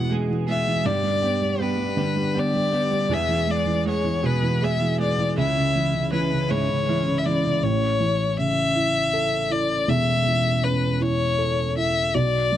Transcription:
Already playing: clean electric guitar E2 B2, felt piano E2 B2 E3 G#3
0.10 clean electric guitar E3 G#3 B3 G#4, felt piano G#3
0.30 felt piano E3
0.47 clean electric guitar E3 G#3 B3 G#4, felt piano G#3, violin E5
0.67 felt piano E3
0.84 clean electric guitar G2 D3 G3 B3 D4 G4, felt piano G2, violin D5
1.03 felt piano G3
1.22 clean electric guitar G3 B3 D4 G4, felt piano B3
1.42 felt piano G3
1.59 clean electric guitar G3 B3 D4 G4, felt piano B3, violin B4
1.78 felt piano G3
1.97 clean electric guitar G2 D3 G3 B3 D4 G4, felt piano D3
2.16 felt piano G3
2.35 clean electric guitar G3 B3 D4 G4, felt piano B3
2.39 violin D5
2.54 felt piano G3
2.72 clean electric guitar G3 B3 D4 G4, felt piano B3
2.91 felt piano G3
3.09 felt piano E2, clean electric guitar E2 B2 E3 G#3 B3 G#4
3.14 violin E5
3.29 felt piano E3
3.47 clean electric guitar E3 G#3 B3 G#4, felt piano G#3
3.51 violin D5
3.66 felt piano E3
3.85 clean electric guitar E3 G#3 B3 G#4, felt piano G#3, violin C#5
4.05 felt piano E3
4.23 clean electric guitar E2 B2 E3 G#3 B3 G#4, felt piano B2, violin B4
4.42 felt piano E3
4.60 clean electric guitar E3 G#3 B3 G#4, felt piano G#3, violin E5
4.81 felt piano E3
4.98 clean electric guitar E3 G#3 B3 G#4, felt piano G#3, violin D5
5.19 felt piano E3
5.36 felt piano C#2, clean electric guitar C#3 E3 G#3 C#4 E4, violin E5
5.57 felt piano C#3
5.73 felt piano E3, clean electric guitar G#3 C#4 E4
5.94 felt piano C#3
6.11 clean electric guitar E3 G#3 C#4 E4, felt piano E3, violin B4
6.32 felt piano C#3
6.49 felt piano G#2, clean electric guitar C#3 E3 G#3 C#4 E4, violin C#5
6.69 felt piano C#3
6.86 clean electric guitar E3 G#3 C#4 E4, felt piano E3
7.07 felt piano C#3
7.18 violin E5
7.24 felt piano E3, clean electric guitar G#3 E4, violin D5
7.44 felt piano C#3
7.63 felt piano A1 A2, violin C#5
8.00 felt piano E3
8.37 felt piano C#3, violin E5
8.75 felt piano E4
9.13 felt piano A4
9.50 felt piano E4, violin D5
9.88 felt piano E1 E2, violin E5
10.26 felt piano E3
10.63 felt piano C#4, violin B4
11.01 felt piano E4, violin C#5
11.38 felt piano A4
11.77 felt piano E4, violin E5
12.14 felt piano B1 B2, violin D5
12.52 felt piano F#3

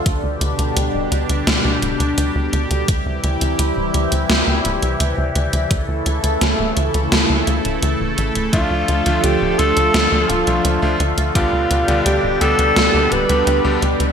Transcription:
Already playing: analog synth pad D3
0.06 analog synth bass D2, analog synth pad B2 G3 D4 G4, kick, closed hi-hat
0.23 analog synth bass D2
0.41 analog synth bass D2, closed hi-hat
0.59 analog synth bass D2, closed hi-hat
0.76 analog synth bass D2, closed hi-hat
0.94 analog synth bass D1
1.12 analog synth bass D2, closed hi-hat
1.29 analog synth bass D2, closed hi-hat
1.47 analog synth bass D2, snare, closed hi-hat
1.65 analog synth bass D2
1.82 analog synth bass D1, closed hi-hat
2.00 analog synth bass D2, closed hi-hat
2.18 analog synth bass D2, closed hi-hat
2.35 analog synth bass D2
2.53 analog synth bass D2, closed hi-hat
2.71 analog synth bass D2, closed hi-hat
2.88 analog synth bass D2, analog synth pad C3 E3 E4, kick, closed hi-hat
3.06 analog synth bass D2
3.24 analog synth bass D2, closed hi-hat
3.41 analog synth bass D2, closed hi-hat
3.59 analog synth bass D2, closed hi-hat
3.77 analog synth bass D1
3.94 analog synth bass D2, closed hi-hat
4.12 analog synth bass D2, closed hi-hat
4.30 analog synth bass D2, snare, closed hi-hat
4.47 analog synth bass D2
4.65 analog synth bass D1, closed hi-hat
4.82 analog synth bass C2, closed hi-hat
5.00 analog synth bass D2, closed hi-hat
5.18 analog synth bass D2
5.35 analog synth bass D2, closed hi-hat
5.53 analog synth bass D2, closed hi-hat
5.71 analog synth bass D2, analog synth pad C#3 A3 E4 A4, kick, closed hi-hat
5.88 analog synth bass D2
6.06 analog synth bass D2, closed hi-hat
6.24 analog synth bass D2, closed hi-hat
6.41 analog synth bass D2, snare, closed hi-hat
6.59 analog synth bass D1
6.77 analog synth bass D2, closed hi-hat
6.94 analog synth bass D2, closed hi-hat
7.12 analog synth bass D2, snare, closed hi-hat
7.30 analog synth bass D2
7.47 analog synth bass D2, closed hi-hat
7.65 analog synth bass D1, closed hi-hat
7.83 analog synth bass D2, closed hi-hat
8.00 analog synth bass D1
8.18 analog synth bass A1, closed hi-hat
8.35 analog synth bass D1, closed hi-hat
8.53 analog synth bass D2, analog synth pad D3 F3 F4, electric grand piano F3 A3 D4 F4, alto saxophone F4, kick, closed hi-hat
8.71 analog synth bass D2
8.88 analog synth bass D2, closed hi-hat
9.06 analog synth bass D2, electric grand piano F3 A3 D4 F4, closed hi-hat
9.23 analog synth bass D2, alto saxophone G4, closed hi-hat
9.41 analog synth bass D1
9.58 analog synth bass D2, electric grand piano F3 A3 D4 F4, alto saxophone A4, closed hi-hat
9.77 analog synth bass D2, closed hi-hat
9.94 analog synth bass D2, snare, closed hi-hat
10.12 analog synth bass D2, electric grand piano F3 A3 D4 F4
10.29 analog synth bass D1, alto saxophone F4, closed hi-hat
10.47 analog synth bass C2, electric grand piano F3 A3 D4 F4, closed hi-hat
10.65 analog synth bass D2, closed hi-hat
10.82 analog synth bass D2, electric grand piano F3 A3 D4 F4
11.00 analog synth bass D2, closed hi-hat
11.18 analog synth bass D2, closed hi-hat
11.35 analog synth bass D2, analog synth pad B2 G3 D4 G4, electric grand piano D3 G3 B3 D4 G4, alto saxophone F4, kick, closed hi-hat
11.53 analog synth bass D2
11.71 analog synth bass D2, closed hi-hat
11.88 analog synth bass D2, electric grand piano D3 G3 B3 D4 G4, closed hi-hat
12.06 analog synth bass D2, alto saxophone G4, closed hi-hat
12.24 analog synth bass D1
12.41 analog synth bass D2, electric grand piano D3 G3 B3 D4 G4, alto saxophone A4, closed hi-hat
12.59 analog synth bass D2, closed hi-hat
12.76 analog synth bass D2, snare, closed hi-hat
12.94 analog synth bass D2, electric grand piano D3 G3 B3 D4 G4
13.12 analog synth bass D1, alto saxophone B4, closed hi-hat
13.29 analog synth bass D2, electric grand piano D3 G3 B3 D4 G4, closed hi-hat
13.47 analog synth bass D2, closed hi-hat
13.65 analog synth bass D2, electric grand piano D3 G3 B3 D4 G4
13.82 analog synth bass D2, closed hi-hat
14.00 analog synth bass D2, closed hi-hat

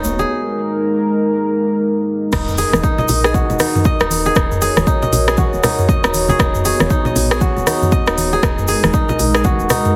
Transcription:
Already playing: fm bass D#1, analog synth pad B3 F#4 C#5, kora D#4 F#4 G#4 D#5
0.03 djembe bass, shaker
0.19 kora G#4, muted conga, shaker
0.29 analog synth pad G#3 D#4 A#4
2.32 fm bass D#1, analog synth pad D#4 A#4 D#5, kora D#4, kick, cross-stick, crash, impact, shaker
2.48 mid tom, shaker
2.58 kora G#4, open hi-hat, muted conga, shaker
2.73 fm bass D#1, cross-stick, high conga, shaker
2.83 kora D#4, kick, shaker
2.98 kora D#5, muted conga, low conga, shaker
3.08 fm bass A#1, open hi-hat, low conga, shaker
3.24 kora G#4, cross-stick, shaker
3.34 kora F#4, kick, muted conga, high conga, shaker
3.50 fm bass D#1, low conga, shaker
3.59 kora D#4, cross-stick, open hi-hat, high conga, shaker
3.75 mid tom, high conga, shaker
3.84 kora D#5, kick, muted conga, shaker
4.00 fm bass D#1, kora D#4, cross-stick, shaker
4.10 open hi-hat, high conga, shaker
4.25 kora G#4, muted conga, shaker
4.35 fm bass D#1, kora D#4, analog synth pad F#4 C#5, kick, cross-stick, shaker
4.52 mid tom, shaker
4.62 kora G#4, open hi-hat, muted conga, shaker
4.76 fm bass D#1, cross-stick, high conga, shaker
4.87 kora D#4, kick, shaker
5.02 kora D#5, muted conga, low conga, shaker
5.12 fm bass A#1, open hi-hat, low conga, shaker
5.28 kora G#4, cross-stick, shaker
5.37 kora F#4, kick, muted conga, high conga, shaker
5.53 fm bass D#1, shaker
5.63 kora D#4, cross-stick, open hi-hat, low conga, shaker
5.78 mid tom, shaker
5.89 kora D#5, kick, muted conga, shaker
6.04 fm bass D#1, kora D#4, cross-stick, shaker
6.14 open hi-hat, high conga, shaker
6.28 kora G#4, muted conga, high conga, low conga, shaker
6.39 fm bass D#1, analog synth pad B3, kora D#4, kick, cross-stick, shaker
6.55 mid tom, shaker
6.65 kora G#4, open hi-hat, muted conga, shaker
6.80 fm bass D#1, cross-stick, high conga, shaker
6.90 kora D#4, kick, shaker
7.05 kora D#5, muted conga, low conga, shaker
7.16 fm bass A#1, open hi-hat, low conga, shaker
7.31 kora G#4, cross-stick, shaker
7.41 kora F#4, kick, muted conga, high conga, shaker
7.57 fm bass D#1, low conga, shaker
7.67 kora D#4, cross-stick, open hi-hat, high conga, shaker
7.82 mid tom, high conga, shaker
7.92 kora D#5, kick, muted conga, shaker
8.07 fm bass D#1, kora D#4, cross-stick, shaker
8.18 open hi-hat, high conga, shaker
8.32 kora G#4, muted conga, shaker
8.43 fm bass D#1, analog synth pad G#3 D#4 A#4, kora D#4, kick, cross-stick, shaker
8.58 mid tom, shaker
8.68 kora G#4, open hi-hat, muted conga, shaker
8.83 fm bass D#1, cross-stick, high conga, shaker
8.94 kora D#4, kick, shaker
9.09 kora D#5, muted conga, low conga, shaker
9.19 fm bass A#1, open hi-hat, low conga, shaker
9.34 kora G#4, cross-stick, shaker
9.44 kora F#4, kick, muted conga, high conga, shaker
9.59 fm bass D#1, shaker
9.70 kora D#4, cross-stick, open hi-hat, low conga, shaker
9.85 mid tom, shaker

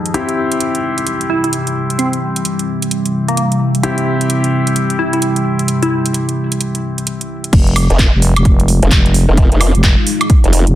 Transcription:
Already playing: grand piano F2 G#3 D#4 G4, ambient pad F3 G#3 D#4
0.06 closed hi-hat
0.14 ambient pad C3 G3 E4, grand piano C4 E4 G4, closed hi-hat
0.29 closed hi-hat
0.52 closed hi-hat
0.60 closed hi-hat
0.75 closed hi-hat
0.98 closed hi-hat
1.07 closed hi-hat
1.21 closed hi-hat
1.30 synth pluck E4
1.44 synth pluck E4, closed hi-hat
1.53 closed hi-hat
1.67 closed hi-hat
1.90 closed hi-hat
1.99 synth pluck C4, closed hi-hat
2.13 closed hi-hat
2.36 closed hi-hat
2.45 closed hi-hat
2.59 closed hi-hat
2.82 closed hi-hat
2.91 closed hi-hat
3.06 closed hi-hat
3.28 synth pluck A#3, closed hi-hat
3.37 synth pluck A#3, closed hi-hat
3.52 closed hi-hat
3.75 closed hi-hat
3.83 grand piano C4 E4 G4, closed hi-hat
3.98 closed hi-hat
4.21 closed hi-hat
4.30 closed hi-hat
4.44 closed hi-hat
4.67 closed hi-hat
4.76 closed hi-hat
4.90 closed hi-hat
4.99 synth pluck E4
5.13 synth pluck E4, closed hi-hat
5.22 closed hi-hat
5.36 closed hi-hat
5.59 closed hi-hat
5.68 closed hi-hat
5.82 synth pluck E4, closed hi-hat
6.06 closed hi-hat
6.14 closed hi-hat
6.29 closed hi-hat
6.52 closed hi-hat
6.61 closed hi-hat
6.75 closed hi-hat
6.98 closed hi-hat
7.07 closed hi-hat
7.21 closed hi-hat
7.44 closed hi-hat
7.53 fm bass F1, ambient pad G#3 D#4 F4, kick, closed hi-hat, crash
7.67 closed hi-hat
7.76 open hi-hat, high woodblock
7.90 wobble bass F1, closed hi-hat
7.99 kick, clap, closed hi-hat
8.13 fm bass F1
8.22 open hi-hat
8.36 fm bass F1, closed hi-hat, high woodblock
8.45 kick, closed hi-hat
8.60 closed hi-hat
8.68 open hi-hat
8.83 wobble bass F1, closed hi-hat
8.91 fm bass F1, kick, clap, closed hi-hat
9.06 closed hi-hat
9.14 open hi-hat
9.29 wobble bass F1
9.37 kick, closed hi-hat
9.52 wobble bass F1, closed hi-hat
9.61 open hi-hat, high woodblock
9.75 fm bass F1, closed hi-hat
9.84 kick, clap, closed hi-hat
10.07 open hi-hat
10.21 closed hi-hat, high woodblock
10.30 kick, closed hi-hat
10.44 wobble bass F1, closed hi-hat
10.53 open hi-hat
10.67 fm bass F1, closed hi-hat

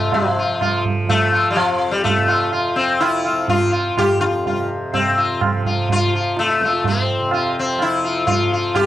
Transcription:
Already playing: tanpura F2 C3 F3, sitar A3 F4
0.12 sitar F3, tabla tin, tabla ge
0.39 sitar F4
0.46 tanpura F3
0.61 sitar F4, tabla na, tabla ge
0.85 tabla ge
1.04 tanpura F3
1.09 sitar A3, tabla tin, tabla ge
1.32 sitar F4, tabla na
1.51 sitar G3
1.56 sitar F3, tabla na
1.61 tanpura F2
1.91 sitar G3
2.04 sitar A3, tabla tin, tabla ge
2.16 tanpura C3
2.28 sitar F4, tabla na
2.52 sitar F4, tabla na
2.74 tanpura F3, sitar C4 F4
3.00 sitar E4 F4, tabla na
3.24 sitar F4, tabla na
3.31 tanpura F3
3.48 sitar F4, tabla tin, tabla ge
3.72 sitar F4, tabla na
3.88 tanpura F2
3.98 sitar F4 G4, tabla na, tabla ge
4.21 sitar F4, tabla te
4.46 tanpura C3, sitar F4, tabla tin, tabla ge
4.93 tanpura C3, sitar C4, tabla tin, tabla ge
5.18 sitar F4
5.41 tabla na, tabla ge
5.50 tanpura F3
5.65 sitar F4, tabla ge
5.89 sitar F4, tabla tin, tabla ge
6.08 tanpura F3
6.15 sitar F4
6.37 sitar A3, tabla te
6.48 tabla te
6.61 tanpura F2, sitar F4, tabla ke
6.73 tabla te
6.84 sitar C4, tabla tin, tabla ge
7.20 tanpura C3
7.31 sitar F4, tabla na
7.59 sitar C4
7.77 tanpura F3, tabla na
7.82 sitar E4
8.04 sitar F4
8.27 sitar F4, tabla tin, tabla ge
8.34 tanpura F3
8.53 sitar F4
8.75 sitar G4, tabla na, tabla ge

